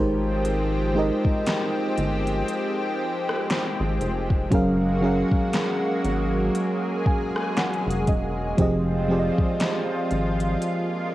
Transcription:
Already playing: analog synth bass G#1, analog synth pad F3 G#3 C4 G4, fm electric piano G#3 D#4 G4 A#4 C5
0.45 closed hi-hat
0.95 fm electric piano G#3 D#4 G4 A#4
0.99 fm electric piano D#5
1.25 analog synth bass G1, kick
1.46 snare, closed hi-hat
1.98 analog synth bass G1, closed hi-hat
2.27 closed hi-hat
2.49 closed hi-hat
3.29 cross-stick
3.50 snare, closed hi-hat
3.80 analog synth bass G#1
4.01 analog synth bass F1, closed hi-hat
4.30 kick
4.50 analog synth bass F#1, fm electric piano F#3 C#4 G#4 A#4, analog synth pad F#3 A#3 F#4, kick, closed hi-hat
4.55 fm electric piano F5
5.01 fm electric piano F#3 C#4 G#4 A#4
5.06 fm electric piano F5
5.32 analog synth bass G#1, kick
5.53 snare, closed hi-hat
6.05 analog synth bass G#1, closed hi-hat
6.55 analog synth pad G#4, closed hi-hat
7.06 fm electric piano G#5, kick
7.36 cross-stick
7.56 fm electric piano F#5, snare, closed hi-hat
7.73 closed hi-hat
7.87 analog synth bass F1, closed hi-hat
8.07 analog synth bass E1, fm electric piano D#5, kick, closed hi-hat
8.57 analog synth bass F1, fm electric piano F3 C4 G4 G#4, analog synth pad F3 C4 F4, kick, closed hi-hat
8.61 fm electric piano D#5
9.08 fm electric piano F3 C4 G4 G#4
9.12 fm electric piano D5
9.19 fm electric piano D#5
9.38 analog synth bass G#1, kick
9.60 snare, closed hi-hat
10.11 analog synth bass G#1, closed hi-hat
10.40 closed hi-hat
10.62 analog synth pad A#3, closed hi-hat

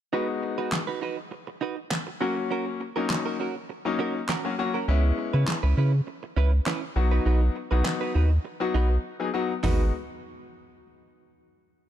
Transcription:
0.13 grand piano G#3 B3 D#4 F#4, clean electric guitar D#4 F#4 B4
0.29 muted clean electric guitar stroke
0.43 muted clean electric guitar stroke
0.58 clean electric guitar D#4 F#4 B4
0.72 snare, clap
0.87 clean electric guitar D#4 F#4 B4
1.01 clean electric guitar D#4 F#4 B4
1.18 muted clean electric guitar stroke
1.31 muted clean electric guitar stroke
1.47 muted clean electric guitar stroke
1.61 clean electric guitar D#4 F#4 B4
1.77 muted clean electric guitar stroke
1.91 muted clean electric guitar stroke, snare, clap
2.07 muted clean electric guitar stroke
2.20 grand piano F#3 A#3 C#4 F#4, clean electric guitar C#4 F#4 A#4
2.37 muted clean electric guitar stroke
2.51 clean electric guitar C#4 F#4 A#4
2.66 muted clean electric guitar stroke
2.80 muted clean electric guitar stroke
2.96 grand piano F#3 A#3 C#4 D#4, clean electric guitar C#4 F#4 A#4
3.10 snare, clap
3.26 clean electric guitar C#4 F#4 A#4
3.39 clean electric guitar C#4 F#4 A#4
3.56 muted clean electric guitar stroke
3.69 muted clean electric guitar stroke
3.85 grand piano F#3 A#3 C#4 D#4, muted clean electric guitar stroke
3.99 clean electric guitar C#4 F#4 A#4
4.15 muted clean electric guitar stroke
4.29 clean electric guitar C#4 F#4 A#4, snare, clap
4.45 grand piano F#3 A#3 C#4 F#4, muted clean electric guitar stroke
4.58 grand piano F#3 A#3 C#4 F#4, muted clean electric guitar stroke
4.74 clean electric guitar C#4 F#4 A#4
4.88 analog synth bass C#2, grand piano G#3 B3 C#4 E4, clean electric guitar C#4 E4 B4
5.04 muted clean electric guitar stroke
5.18 muted clean electric guitar stroke
5.33 analog synth bass C#3, clean electric guitar C#4 E4 B4
5.47 snare, clap
5.63 analog synth bass C#2, clean electric guitar C#4 E4 B4
5.77 analog synth bass C#3, clean electric guitar C#4 E4 B4
5.93 muted clean electric guitar stroke
6.07 muted clean electric guitar stroke
6.23 muted clean electric guitar stroke
6.37 analog synth bass C#2, clean electric guitar C#4 E4 B4
6.52 muted clean electric guitar stroke
6.66 clean electric guitar C#4 E4 B4, snare, clap
6.82 muted clean electric guitar stroke
6.96 analog synth bass B1, grand piano F#3 B3 D#4 F#4, muted clean electric guitar stroke
7.12 clean electric guitar D#4 F#4 B4
7.25 analog synth bass B1, clean electric guitar D#4 F#4 B4
7.41 muted clean electric guitar stroke
7.55 muted clean electric guitar stroke
7.71 analog synth bass B1, grand piano F#3 B3 D#4 F#4, clean electric guitar D#4 F#4 B4
7.85 muted clean electric guitar stroke, snare, clap
8.01 clean electric guitar D#4 F#4 B4
8.15 analog synth bass D#2, clean electric guitar D#4 F#4 B4
8.31 muted clean electric guitar stroke
8.45 muted clean electric guitar stroke
8.60 grand piano F#3 B3 D#4 F#4, muted clean electric guitar stroke
8.74 analog synth bass B1, clean electric guitar D#4 F#4 B4
8.90 muted clean electric guitar stroke
9.20 grand piano F#3 B3 D#4 G#4
9.34 grand piano F#3 B3 D#4 F#4
9.63 analog synth bass G#1, grand piano G#3 B3 D#4 F#4, clean electric guitar D#4 F#4 B4, snare, floor tom, open hi-hat

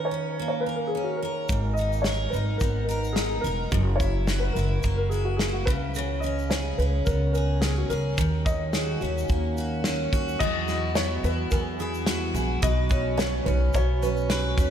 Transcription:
Already playing: steel-string acoustic guitar D#3 C#4 A#4
0.05 upright piano C#5
0.11 steel-string acoustic guitar C#4
0.39 steel-string acoustic guitar A#3
0.48 upright piano C#5
0.60 upright piano B4
0.66 steel-string acoustic guitar A#4
0.76 upright piano A#4
0.87 upright piano G#4
0.95 steel-string acoustic guitar C#4
1.03 upright piano F#4
1.16 upright piano A#4
1.22 steel-string acoustic guitar A#4
1.49 upright bass G#1, steel-string acoustic guitar G#2, kick, shaker
1.74 upright piano D#5, shaker
1.79 steel-string acoustic guitar D#4
1.93 shaker
2.02 upright piano C#5, snare, shaker
2.07 steel-string acoustic guitar A#4
2.30 upright bass G#1, steel-string acoustic guitar D#4, upright piano B4, shaker
2.58 upright bass G#1, steel-string acoustic guitar B3, upright piano A#4, kick, shaker
2.84 upright piano A#4
2.89 steel-string acoustic guitar A#4, shaker
3.04 shaker
3.13 steel-string acoustic guitar D#4, upright piano G#4, snare
3.17 shaker
3.29 upright piano G#4
3.41 upright bass E1, upright piano A#4, steel-string acoustic guitar A#4, shaker
3.71 upright bass F#1, steel-string acoustic guitar F#2, kick, shaker
3.96 upright piano C#5
4.00 steel-string acoustic guitar E4, kick, shaker
4.27 steel-string acoustic guitar F#4, snare, shaker
4.39 upright piano B4
4.53 upright bass F#1, steel-string acoustic guitar E4, upright piano A#4, shaker
4.83 upright bass F#1, steel-string acoustic guitar A#3, kick, shaker
4.97 upright piano A#4
5.09 steel-string acoustic guitar F#4, upright piano G#4, shaker
5.25 upright piano F#4
5.37 steel-string acoustic guitar E4, upright piano G#4, snare, shaker
5.53 upright piano F#4
5.65 upright bass C#2, steel-string acoustic guitar C#3, upright piano B4, kick, shaker
5.95 steel-string acoustic guitar C#3, shaker
6.20 steel-string acoustic guitar C#4, upright piano D#5, shaker
6.39 shaker
6.50 steel-string acoustic guitar G#4, upright piano C#5, snare, shaker
6.78 upright bass C#2, steel-string acoustic guitar C#4, upright piano B4, shaker
7.05 upright bass C#2, steel-string acoustic guitar B3, upright piano A#4, kick, shaker
7.32 steel-string acoustic guitar G#4, upright piano A#4, shaker
7.61 steel-string acoustic guitar C#4, upright piano G#4, snare, shaker
7.78 upright piano F#4
7.89 upright bass C#2, steel-string acoustic guitar G#4, upright piano A#4, shaker
8.18 upright bass D#2, steel-string acoustic guitar D#3, kick, shaker
8.45 steel-string acoustic guitar C#4, upright piano D#5, kick, shaker
8.73 steel-string acoustic guitar F#4, upright piano G#4, snare, shaker
9.00 upright bass D#2, steel-string acoustic guitar C#4, upright piano F#4, shaker
9.18 shaker
9.29 upright bass D#2, steel-string acoustic guitar A#3, kick, shaker
9.57 steel-string acoustic guitar F#4, shaker
9.84 steel-string acoustic guitar C#4, snare, shaker
10.13 upright bass D#2, steel-string acoustic guitar F#4, kick, shaker
10.28 shaker
10.39 upright bass E2, steel-string acoustic guitar E3 F#4, nylon-string guitar F#3 G#4, upright piano D#5, kick, crash
10.67 nylon-string guitar B3, steel-string acoustic guitar E4, snare, shaker
10.95 steel-string acoustic guitar B3, upright piano C#5, snare, shaker
11.24 upright bass E2, nylon-string guitar B3, steel-string acoustic guitar E4, upright piano B4, shaker
11.51 upright bass E2, steel-string acoustic guitar B3, nylon-string guitar G#4, upright piano A#4, kick, shaker
11.79 nylon-string guitar B3, steel-string acoustic guitar E4, upright piano G#4, shaker
11.94 shaker
12.06 nylon-string guitar E4, steel-string acoustic guitar F#4, snare, shaker
12.34 upright bass A#1, steel-string acoustic guitar E4, nylon-string guitar G#4, shaker
12.62 upright bass B1, steel-string acoustic guitar B2 B4, nylon-string guitar F#3 F#4, upright piano D#5, kick, shaker
12.89 nylon-string guitar F#3, steel-string acoustic guitar C#4, kick, shaker
13.17 steel-string acoustic guitar B3, nylon-string guitar C#4, upright piano C#5, snare, shaker
13.45 upright bass B1, nylon-string guitar F#3, steel-string acoustic guitar C#4, upright piano B4, shaker
13.73 upright bass B1, steel-string acoustic guitar B3, nylon-string guitar F#4, upright piano C#5, kick, shaker
14.02 nylon-string guitar F#3, steel-string acoustic guitar C#4, upright piano B4, shaker
14.17 shaker
14.29 nylon-string guitar C#4, steel-string acoustic guitar B4, snare, shaker
14.57 upright bass D#2, steel-string acoustic guitar C#4, nylon-string guitar F#4, kick, shaker

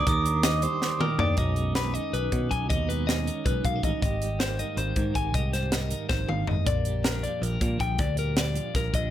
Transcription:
Already playing: clean electric guitar D#4
0.07 picked electric bass D#2, clean electric guitar D#2 A#4, glockenspiel D#6, kick, closed hi-hat
0.26 clean electric guitar D4, closed hi-hat
0.43 clean electric guitar D#3 D#5, snare, closed hi-hat
0.62 clean electric guitar G3 C5, closed hi-hat
0.82 clean electric guitar D4, snare
0.99 clean electric guitar A#2 G4 A#4, mid tom
1.19 picked electric bass D#2, clean electric guitar D4 D5, floor tom
1.37 picked electric bass B1, clean electric guitar B2 D#3 G#3 C#4 D#4 D#5, kick, closed hi-hat
1.56 clean electric guitar G#3, closed hi-hat
1.75 clean electric guitar C#4 B4, snare, closed hi-hat
1.94 clean electric guitar D#3 D#5, closed hi-hat
2.13 picked electric bass B1, clean electric guitar G#3 B4, closed hi-hat
2.32 clean electric guitar F#2 C#4, picked electric bass B2, kick, closed hi-hat
2.51 picked electric bass B1, clean electric guitar D#4 G#5, kick, closed hi-hat
2.70 picked electric bass D#2, clean electric guitar B2 D#4 D#5, kick, closed hi-hat
2.89 clean electric guitar G#3 B4, closed hi-hat
3.07 clean electric guitar C#4 D#5, snare, closed hi-hat
3.27 clean electric guitar D#3, closed hi-hat
3.45 picked electric bass B1, clean electric guitar G#3 B4, kick, closed hi-hat
3.65 picked electric bass B1, clean electric guitar F#2 A#3 F5, kick, closed hi-hat
3.76 clean electric guitar C#4
3.83 picked electric bass A1, clean electric guitar D#4 D#5, kick, closed hi-hat
4.02 picked electric bass G#1, clean electric guitar G#2 G4 D#5, kick, closed hi-hat
4.22 clean electric guitar G3, closed hi-hat
4.40 clean electric guitar A#3 C5, snare, closed hi-hat
4.59 clean electric guitar D#3 D#5, closed hi-hat
4.77 picked electric bass G#1, clean electric guitar G3 C5, closed hi-hat
4.96 picked electric bass G#2, clean electric guitar D#3 A#3, kick, closed hi-hat
5.15 picked electric bass G#1, clean electric guitar G4 G#5, kick, closed hi-hat
5.34 picked electric bass C2, clean electric guitar G#2 G4 D#5, kick, closed hi-hat
5.53 clean electric guitar G3 C5, snare, closed hi-hat
5.72 clean electric guitar A#3 D#5, snare, closed hi-hat
5.91 clean electric guitar D#3, closed hi-hat
6.09 picked electric bass G#1, clean electric guitar F2 C5, kick, snare
6.28 picked electric bass G#1, clean electric guitar G2 F5, mid tom
6.47 picked electric bass G#1, clean electric guitar G#2 D#5, floor tom
6.66 picked electric bass A#1, clean electric guitar A#2 D5, kick, closed hi-hat
6.85 clean electric guitar G3, closed hi-hat
7.04 clean electric guitar D4 A#4, snare, closed hi-hat
7.23 clean electric guitar F3 D5, closed hi-hat
7.42 picked electric bass A#1, clean electric guitar G3 A#4, closed hi-hat
7.61 clean electric guitar F2 D4, picked electric bass A#2, kick, closed hi-hat
7.80 picked electric bass A#1, clean electric guitar G#4 G5, kick, closed hi-hat
7.98 picked electric bass D2, clean electric guitar A#2 D5, kick, closed hi-hat
8.17 clean electric guitar G3 A#4, closed hi-hat
8.37 clean electric guitar D4 D5, snare, closed hi-hat
8.55 clean electric guitar F3, closed hi-hat
8.74 picked electric bass A#1, clean electric guitar G3 A#4, kick, snare, closed hi-hat
8.92 picked electric bass A#1, clean electric guitar F2 D4 D#5, kick, closed hi-hat

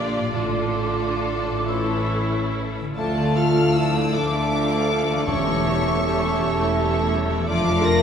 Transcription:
Already playing: double bass section A#1, harp A#2 D4 F4 A#4, cello section A#2, viola section D3 D4, violin section F4 D5, clarinet G4, cor anglais D5, flute D6
0.18 harp A2
0.23 harp D4
0.27 harp F4
0.32 timpani A2, viola section D3 D4, clarinet F4, violin section F4 A4, harp D5, flute D6
0.36 double bass section A1, cello section A2, cor anglais D5
1.50 harp A2
1.54 harp C#4
1.59 harp E4
1.64 clarinet E4, harp E5, flute E6
1.68 viola section E3 C#4, violin section E4 A4, cor anglais C#5
2.81 harp D3
2.85 harp A3
2.90 harp F4
2.94 cello section D2, french horn section A3, bassoon A3, clarinet A4, harp D5, cor anglais F5, violin section A5, flute A5
2.98 double bass section D2, viola section F3 D4, violin section D4 A4
3.18 viola section D3 A3, violin section F4 D5
3.36 viola section F3 D4, violin section D4 A4 F6, french horn section F4
3.56 viola section D3 A3, violin section F4 D5
3.74 viola section F3 D4, violin section D4 A4 E6, french horn section E4
3.94 viola section D3 A3, violin section F4 D5
4.12 cello section D2, double bass section D2, viola section F3 D4, bassoon A3, violin section D4 A4 D6, french horn section D4, clarinet A4, cor anglais F5, flute A5
4.32 viola section D3 A3, violin section F4 D5
4.52 viola section F3 D4, violin section D4 A4
4.70 viola section D3 A3, violin section F4 D5
4.90 viola section F3 D4, violin section D4 A4
5.09 viola section D3 A3, harp E3, violin section F4 D5
5.15 harp A3
5.20 harp E4
5.24 double bass section E1, timpani E2, cello section E2, bassoon A3, french horn section C#4, clarinet G4, harp A4, violin section A4, cor anglais E5, flute A5
5.28 viola section G3 G4, violin section C#5 C#6
5.47 viola section A3 E4, violin section A4 C#5
5.66 viola section G3 G4, violin section A4 C#5
5.83 viola section A3 E4, violin section A4 C#5
6.03 viola section G3 G4, violin section A4 C#5
6.20 viola section A3 E4, violin section A4 C#5
6.39 double bass section E1, cello section E2, viola section G3 G4, violin section A4 C#5
6.59 viola section A3 E4, violin section A4 C#5
6.78 viola section G3 G4, violin section A4 C#5
6.96 viola section A3 E4, violin section A4 C#5
7.13 viola section G3 G4, violin section A4 C#5
7.31 harp F3, viola section A3 E4, violin section A4 C#5
7.35 harp A3
7.40 harp D4
7.44 french horn section D4, viola section F4, harp A4, cor anglais D5, violin section D6
7.48 double bass section F1, cello section F2, viola section F3, bassoon A3, clarinet F4, violin section F4 D5, flute A5
7.66 viola section A3 D4, violin section A4 F5
7.83 viola section F3 F4, violin section F4 D5 A#6, french horn section A#4

